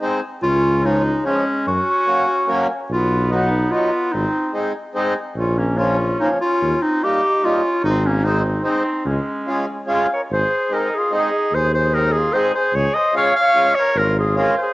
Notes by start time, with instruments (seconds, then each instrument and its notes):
0.01 accordion G#3 C4 D#4
0.43 tuba C#2, trumpet C#4, clarinet F4
0.83 accordion F3 G#3 C#4, trumpet G#3, clarinet D#4
1.24 accordion F3 G#3 C#4, trumpet G#3, clarinet C#4
1.67 tuba F#2, trumpet C#4, clarinet F#4
2.06 accordion F#3 A#3 C#4
2.48 accordion F#3 A#3 C#4
2.90 tuba B1, trumpet B3, clarinet F4
3.30 accordion F#3 B3 D#4, clarinet D#4
3.35 trumpet B3
3.71 accordion F#3 B3 D#4, trumpet B3, clarinet F4
4.12 tuba G#1, trumpet C4, clarinet D#4
4.53 accordion G#3 C4 D#4
4.94 accordion G#3 C4 D#4
5.36 tuba A#1, trumpet C#4, clarinet F4
5.58 trumpet A#3, clarinet C#4
5.77 accordion F3 A#3 C#4, trumpet C#4, clarinet F4
6.19 accordion F3 A#3 C#4, trumpet A#3, clarinet D#4
6.41 trumpet C#4, clarinet F4
6.62 tuba D#2
6.81 trumpet C4, clarinet D#4
7.03 accordion G3 A#3 D#4, trumpet D#4, clarinet G4
7.42 accordion G3 A#3 D#4, trumpet C#4, clarinet F4
7.83 tuba G#1, clarinet D#4
7.89 trumpet C4
8.06 trumpet A#3, clarinet C#4
8.24 accordion G#3 C4 D#4, trumpet C4, clarinet D#4
8.63 accordion G#3 C4 D#4, clarinet D#4
8.68 trumpet C4
9.05 tuba C#2, trumpet G#3, clarinet C#4
9.47 accordion G#3 C#4 F4
9.87 accordion G#3 C#4 F4
10.13 trumpet A#4, clarinet C#5
10.31 tuba G#1, trumpet G#4, clarinet C5
10.70 accordion G#3 C4 D#4, trumpet D#4, clarinet A#4
10.95 trumpet F4, clarinet G#4
11.11 accordion G#3 C4 D#4, clarinet G#4
11.16 trumpet D#4
11.52 tuba D#2, clarinet C5
11.57 trumpet G#4
11.74 trumpet G#4, clarinet C5
11.93 accordion G#3 C4 D#4, clarinet A#4
11.99 trumpet D#4
12.13 clarinet G#4
12.18 trumpet F4
12.33 accordion G#3 C4 D#4, trumpet G#4, clarinet C5
12.55 trumpet G#4, clarinet C5
12.74 tuba C#2, trumpet G#4, clarinet C#5
12.94 trumpet C5, clarinet D#5
13.14 accordion G#3 C#4 F4, trumpet C#5, clarinet F5
13.36 clarinet F5
13.40 trumpet C#5
13.55 accordion G#3 C#4 F4
13.75 clarinet C#5
13.80 trumpet A#4
13.95 tuba G#1, clarinet A#4
14.00 trumpet F4
14.18 trumpet F4, clarinet G#4
14.36 accordion G#3 C#4 F4, trumpet F4, clarinet A#4
14.58 trumpet G#4, clarinet C5